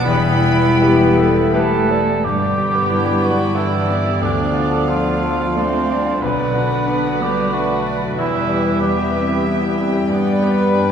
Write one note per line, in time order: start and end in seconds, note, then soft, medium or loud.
0.00 1.99 B3 medium
0.05 1.99 E1 medium
0.05 1.49 E2 medium
0.05 0.78 E2 medium
0.05 2.26 E3 medium
0.05 0.23 G3 medium
0.05 1.86 G3 medium
0.05 1.49 B3 medium
0.05 1.86 E4 medium
0.05 1.99 E4 medium
0.05 2.02 B4 medium
0.05 1.89 G5 medium
0.05 1.49 B5 loud
0.23 0.43 B3 medium
0.42 0.61 E4 medium
0.42 2.26 E4 medium
0.60 0.79 G4 medium
0.78 0.97 E4 medium
0.78 1.49 E4 medium
0.78 1.19 G4 medium
0.78 1.49 G4 medium
0.78 1.87 B4 medium
0.78 1.49 B4 medium
0.97 1.16 B3 medium
1.16 1.34 G3 medium
1.16 1.54 A4 medium
1.16 2.26 E5 medium
1.33 1.52 B3 medium
1.52 2.20 A3 medium
1.52 1.71 E4 medium
1.52 2.20 E4 medium
1.52 2.20 G4 medium
1.52 2.26 A4 loud
1.52 1.93 B4 medium
1.52 2.20 B4 medium
1.52 4.24 B5 medium
1.71 1.89 G4 medium
1.88 2.06 E4 medium
1.88 2.89 B4 medium
1.88 2.25 D5 medium
2.07 2.23 B3 medium
2.22 4.18 G2 medium
2.22 4.25 G2 medium
2.22 4.19 G2 medium
2.22 4.19 D3 medium
2.22 3.23 G3 medium
2.22 4.18 B3 medium
2.22 3.26 G4 loud
2.22 6.19 D5 medium
2.22 4.18 G5 medium
2.42 2.67 D5 soft
2.56 4.54 D4 medium
2.56 2.84 G4 soft
2.74 3.00 B4 soft
2.89 3.16 D4 soft
2.89 3.58 E4 medium
2.89 3.88 B4 medium
3.05 3.32 G4 soft
3.22 3.56 F#3 medium
3.22 3.58 F#4 medium
3.22 3.49 B4 medium
3.22 5.22 D5 medium
3.38 3.65 G4 soft
3.55 4.23 E3 medium
3.55 3.82 D4 medium
3.55 3.91 D4 medium
3.55 4.24 E4 medium
3.55 4.25 G5 medium
3.71 3.98 G4 soft
3.88 5.61 B3 medium
3.88 4.25 B4 medium
3.88 4.15 D5 medium
4.05 4.22 G4 soft
4.22 6.18 D2 medium
4.22 6.19 D2 medium
4.22 4.87 D3 medium
4.22 6.25 D3 medium
4.22 6.23 F3 medium
4.22 6.19 A3 medium
4.22 4.90 D4 medium
4.22 8.14 D4 medium
4.22 6.18 F5 medium
4.38 4.65 D5 soft
4.54 6.55 D4 medium
4.54 4.81 F4 soft
4.71 4.98 A4 soft
4.89 5.58 F3 medium
4.89 5.16 D4 soft
4.89 5.57 F4 medium
4.89 5.89 A4 medium
5.06 5.34 F4 soft
5.23 5.51 A4 soft
5.23 7.21 D5 medium
5.41 5.68 F4 soft
5.57 5.94 A3 medium
5.57 6.23 C4 medium
5.57 5.84 D4 medium
5.57 6.25 C5 loud
5.57 6.25 F5 medium
5.73 6.00 F4 soft
5.89 6.26 G3 medium
5.89 6.25 A4 medium
5.89 6.16 D5 medium
6.06 6.22 F4 medium
6.21 8.13 B1 medium
6.21 8.20 B2 medium
6.21 8.13 D3 medium
6.21 6.55 F#3 medium
6.21 7.19 B3 medium
6.21 10.07 B4 medium
6.21 7.23 B4 medium
6.21 8.13 D5 medium
6.25 8.15 F#5 medium
6.38 6.64 D5 medium
6.54 6.89 D4 medium
6.54 8.21 D4 medium
6.54 6.80 F#4 soft
6.71 6.97 B4 soft
6.87 7.54 B3 medium
6.87 7.14 D4 soft
6.87 7.86 B4 medium
7.05 7.31 F#4 soft
7.21 7.53 G3 medium
7.21 7.55 G4 medium
7.21 7.48 B4 soft
7.21 8.21 D5 medium
7.38 7.63 F#4 soft
7.53 8.18 F#3 medium
7.53 8.18 A3 medium
7.53 7.79 D4 medium
7.53 7.95 F#4 medium
7.53 8.21 F#5 medium
7.70 7.95 F#4 soft
7.86 8.81 B4 medium
7.86 8.12 D5 medium
8.02 8.18 F#4 soft
8.17 10.10 E2 medium
8.17 10.07 E2 medium
8.17 10.14 E2 medium
8.17 8.82 E3 medium
8.17 10.92 G3 medium
8.17 8.84 G3 medium
8.17 10.10 E4 medium
8.17 8.78 E4 medium
8.17 10.07 E5 medium
8.17 10.92 G5 medium
8.34 8.59 E5 soft
8.49 10.14 E4 medium
8.49 8.75 G4 soft
8.65 8.91 B4 soft
8.81 9.46 G3 medium
8.81 9.18 B3 medium
8.81 9.07 E4 soft
8.81 9.44 G4 medium
8.81 9.78 B4 medium
8.97 9.23 G4 soft
9.12 9.49 C4 medium
9.12 9.39 B4 medium
9.12 10.14 E5 medium
9.28 9.55 G4 soft
9.45 9.82 B3 medium
9.45 9.71 E4 medium
9.45 10.92 G5 medium
9.62 9.88 G4 medium
9.78 10.11 C4 medium
9.78 10.74 B4 medium
9.78 10.04 E5 medium
9.93 10.10 G4 soft
10.09 10.92 G2 medium
10.09 10.92 G3 medium
10.09 10.92 B3 medium
10.09 10.52 B3 medium
10.09 10.92 D4 medium
10.09 10.92 B4 loud
10.09 10.92 D5 medium
10.27 10.52 D5 soft
10.43 10.92 D4 medium
10.43 10.68 G4 soft
10.59 10.84 B4 soft
10.74 10.92 D4 soft
10.74 10.92 D4 medium
10.74 10.92 B4 medium